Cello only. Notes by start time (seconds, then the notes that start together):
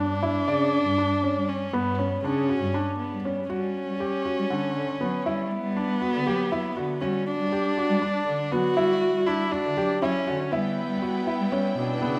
Already playing: G2
0.48 C#3
0.86 G2
1.36 G3
1.73 G2
2.24 C#3
2.61 G2
3.12 G3
3.49 G3
3.88 G3
4.38 G3
4.50 G3
4.76 D3
5.01 F#3
5.26 G3
5.64 G3
6.14 D3
6.26 F#3
6.51 F#3
6.76 D3
7.01 G3
7.39 G3
7.89 G3
8.02 G3
8.26 D3
8.52 F#3
8.76 G3
9.14 G3
9.64 D3
9.77 F#3
10.03 F#3
10.27 D3
10.52 G3
10.90 G3
11.40 G3
11.52 G3
11.77 B2
12.02 C#3